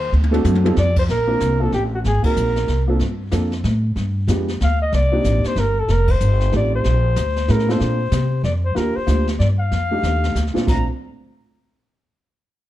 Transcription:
Already playing: D#2 C5
0.12 D2, high tom
0.23 high tom
0.31 A3 C4 D4 F#4 A4, high tom
0.44 F#2, hi-hat pedal, high tom
0.55 high tom
0.64 G3 C4 D#4 F4 A4, high tom
0.76 F2 D5, snare
0.96 C5, kick, crash
1.09 A#1 A#4, brush sweep, snare
1.27 A#3 C4 D4 F4 A#4
1.40 C2, snare, hi-hat pedal
1.60 A#3 C4 D4 F4 A4
1.72 A1 G4, snare
1.94 F#4
2.04 G#1 G#4, brush sweep, snare
2.22 A#3 C4 D#4 F#4 G#4 A#4, muted upright bass stroke, kick, crash
2.36 A#1, hi-hat pedal
2.56 snare
2.68 C2, snare
2.88 A#3 C4 D4 F4 A4
2.99 G2, brush sweep, snare
3.31 F2 A#3 C4 D4 F4 A4, snare, hi-hat pedal
3.52 snare
3.64 A2, snare
3.96 G2, brush sweep, snare
4.28 F2 G#3 B3 D4 F4 G4, snare, hi-hat pedal
4.48 snare
4.60 D2 F5, snare
4.82 D#5
4.92 C2 D5, brush sweep, snare
5.12 A#3 C4 D4 D#4 G4
5.24 A1, snare, hi-hat pedal
5.44 C5, muted upright bass stroke, snare
5.56 G1 A#4, snare
5.80 A4
5.88 F1 A#4, brush sweep, snare
6.08 C5, kick, crash
6.20 G1, hi-hat pedal
6.40 snare
6.52 A1 A3 C4 D#4 F4 G4, snare
6.57 D5
6.76 C5
6.84 A#1, brush sweep, snare
7.16 D2, snare, hi-hat pedal
7.36 snare
7.48 A2 A3 B3 C#4 E4 G#4 A#4, snare
7.59 snare
7.68 A#3 C4 D4 F4 A4 C5, snare
7.79 A#2 A#3 C4 D4 F4 A4, brush sweep, snare
8.12 C3, snare, hi-hat pedal
8.43 F2 D5, snare
8.65 C5
8.75 D#2 A#3 D4 F4 G4 A#4, brush sweep, snare
8.96 C5, muted upright bass stroke
9.07 D2 A#3 D4 F4 G4, snare, hi-hat pedal
9.27 snare
9.39 G2 D5, snare
9.60 F5
9.71 F2, brush sweep, snare
9.91 A3 D4 D#4 G4
10.03 D#2, snare, hi-hat pedal
10.24 snare
10.35 D2, snare, hi-hat pedal
10.47 snare
10.54 A#2 A3 C4 D4 F4, muted upright bass stroke, snare
10.66 A#1 A3 C4 D4 F4 A#5, kick, snare, crash

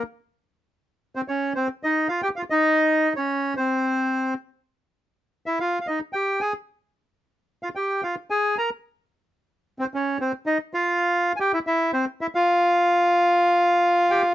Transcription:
1.15 C4 C5
1.28 C#4 C#5
1.55 C4 C5
1.83 D#4 D#5
2.09 F4 F5
2.23 G4 G5
2.36 F4 F5
2.50 D#4 D#5
3.16 C#4 C#5
3.57 C4 C5
5.46 E4 E5
5.60 F4 F5
5.81 F5
5.87 D#4 D#5
6.13 G4 G5
6.40 G#4 G#5
7.63 F4 F5
7.75 G4 G5
8.03 F4 F5
8.30 G#4 G#5
8.58 A#4 A#5
9.79 C4 C5
9.94 C#4 C#5
10.20 C4 C5
10.46 D#4 D#5
10.74 F4 F5
11.36 G4 G#5
11.40 G5
11.54 E4 E5
11.67 E4 E5
11.93 C4 C5
12.21 E4 E5
12.35 F4 F5
14.10 G4 G5

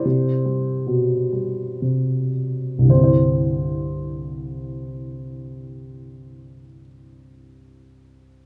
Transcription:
Already playing: E4 C5
0.05 C3
0.46 G3
0.87 B2
1.33 G3
1.82 C3
2.79 C2
2.83 G2
2.89 D3 C5
2.94 C4
2.99 E4
3.04 C5

